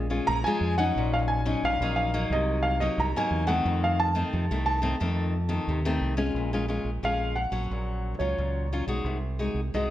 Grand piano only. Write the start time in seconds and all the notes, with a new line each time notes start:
0.27 A#5
0.44 G#5
0.78 F#5
1.14 F5
1.28 G#5
1.65 F5
1.96 F5
2.33 D#5
2.63 F5
2.80 D#5
3.00 A#5
3.17 G#5
3.47 F#5
3.84 F5
4.00 A5
4.66 A5
7.05 F5
7.36 F#5
8.19 C#5
9.75 D#5